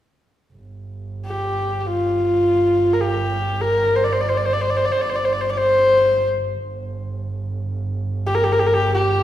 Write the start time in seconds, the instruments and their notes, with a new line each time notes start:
0.54 double bass G1
1.27 horsehead fiddle G4
1.80 horsehead fiddle G4
1.86 horsehead fiddle F4
2.93 horsehead fiddle A#4
3.01 horsehead fiddle G4
3.62 horsehead fiddle A#4
3.96 horsehead fiddle C5
4.04 horsehead fiddle D5
4.13 horsehead fiddle C5
4.21 horsehead fiddle D5
4.29 horsehead fiddle C5
4.37 horsehead fiddle D5
4.45 horsehead fiddle C5
4.53 horsehead fiddle D5
4.61 horsehead fiddle C5
4.70 horsehead fiddle D5
4.77 horsehead fiddle C5
4.85 horsehead fiddle D5
4.92 horsehead fiddle C5
5.01 horsehead fiddle D5
5.09 horsehead fiddle C5
5.16 horsehead fiddle D5
5.25 horsehead fiddle C5
5.33 horsehead fiddle D5
5.41 horsehead fiddle C5
5.50 horsehead fiddle D5
5.57 horsehead fiddle C5
6.65 double bass G1
8.27 horsehead fiddle G4
8.35 horsehead fiddle A#4
8.44 horsehead fiddle G4
8.52 horsehead fiddle A#4
8.59 horsehead fiddle G4
8.66 horsehead fiddle A#4
8.75 horsehead fiddle G4
8.94 horsehead fiddle G4